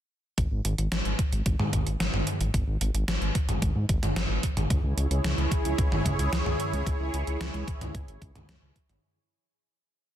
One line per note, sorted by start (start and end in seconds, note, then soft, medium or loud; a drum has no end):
0.38 0.47 G#1 loud
0.38 kick loud
0.38 closed hi-hat medium
0.51 0.61 G#1 medium
0.65 0.74 G#1 medium
0.65 closed hi-hat medium
0.78 0.88 G#1 medium
0.78 closed hi-hat medium
0.92 1.01 G#1 loud
0.92 snare loud
0.92 closed hi-hat medium
1.05 1.15 G#1 medium
1.05 closed hi-hat soft
1.19 kick loud
1.19 closed hi-hat medium
1.32 1.42 G#1 medium
1.32 closed hi-hat medium
1.46 1.55 G#1 loud
1.46 kick loud
1.46 closed hi-hat medium
1.59 1.69 G#2 medium
1.59 mid tom medium
1.73 1.83 G#1 medium
1.73 kick medium
1.73 closed hi-hat medium
1.86 1.96 G#1 medium
1.86 closed hi-hat medium
2.00 2.09 G#1 loud
2.00 snare loud
2.00 closed hi-hat medium
2.13 2.23 G#1 medium
2.13 mid tom medium
2.27 closed hi-hat medium
2.40 2.50 G#1 medium
2.40 closed hi-hat medium
2.54 2.64 G#1 loud
2.54 kick loud
2.54 closed hi-hat medium
2.67 2.77 G#1 medium
2.81 2.91 G#1 medium
2.81 closed hi-hat medium
2.94 3.04 G#1 medium
2.94 closed hi-hat medium
3.08 3.18 G#1 loud
3.08 snare loud
3.08 closed hi-hat medium
3.21 3.31 G#1 medium
3.21 closed hi-hat soft
3.35 kick loud
3.35 closed hi-hat medium
3.48 3.58 G#1 medium
3.48 closed hi-hat medium
3.48 mid tom medium
3.62 3.72 G#1 loud
3.62 kick loud
3.62 closed hi-hat medium
3.75 3.85 G#2 medium
3.89 3.99 G#1 loud
3.89 kick loud
3.89 closed hi-hat medium
4.02 4.12 G#1 medium
4.02 closed hi-hat medium
4.02 mid tom medium
4.16 4.26 G#1 medium
4.16 snare loud
4.16 closed hi-hat medium
4.29 4.39 G#1 medium
4.43 kick medium
4.43 closed hi-hat medium
4.56 4.66 G#1 medium
4.56 closed hi-hat medium
4.56 mid tom medium
4.70 4.80 C#2 loud
4.70 8.99 E4 medium
4.70 8.99 G#4 medium
4.70 8.99 C#5 medium
4.70 kick loud
4.70 closed hi-hat medium
4.83 4.93 C#2 medium
4.97 5.07 C#2 medium
4.97 closed hi-hat medium
5.11 5.20 C#2 medium
5.11 closed hi-hat medium
5.24 5.34 C#2 loud
5.24 snare loud
5.24 closed hi-hat medium
5.37 5.47 C#2 medium
5.37 closed hi-hat soft
5.51 kick loud
5.51 closed hi-hat medium
5.65 5.74 C#2 medium
5.65 closed hi-hat medium
5.78 5.88 C#2 loud
5.78 kick loud
5.78 closed hi-hat medium
5.92 6.01 G#1 medium
5.92 mid tom medium
6.05 6.15 C#2 loud
6.05 kick medium
6.05 closed hi-hat medium
6.19 6.28 C#2 medium
6.19 closed hi-hat medium
6.32 6.42 C#2 loud
6.32 snare loud
6.32 closed hi-hat medium
6.46 6.55 C#2 medium
6.46 mid tom medium
6.60 closed hi-hat medium
6.73 6.83 C#2 medium
6.73 closed hi-hat medium
6.86 6.96 C#2 loud
6.86 kick loud
6.86 closed hi-hat medium
7.00 7.10 C#2 medium
7.13 7.23 C#2 loud
7.13 closed hi-hat medium
7.27 7.37 C#2 medium
7.27 closed hi-hat medium
7.41 7.50 C#2 loud
7.41 snare loud
7.41 closed hi-hat medium
7.54 7.64 C#2 medium
7.54 snare soft
7.54 closed hi-hat soft
7.68 kick loud
7.68 closed hi-hat medium
7.81 7.91 C#2 medium
7.81 closed hi-hat soft
7.81 mid tom medium
7.95 8.04 C#2 loud
7.95 kick loud
7.95 closed hi-hat medium
8.08 8.18 G#1 medium
8.08 closed hi-hat soft
8.22 8.31 C#2 loud
8.22 kick loud
8.22 closed hi-hat medium
8.35 8.45 C#2 medium
8.35 closed hi-hat soft
8.35 mid tom medium
8.49 8.58 C#2 loud
8.49 snare loud
8.49 closed hi-hat medium
8.62 8.72 C#2 medium
8.76 kick medium
8.76 closed hi-hat medium
8.89 8.99 G#1 medium
8.89 closed hi-hat medium
8.89 mid tom medium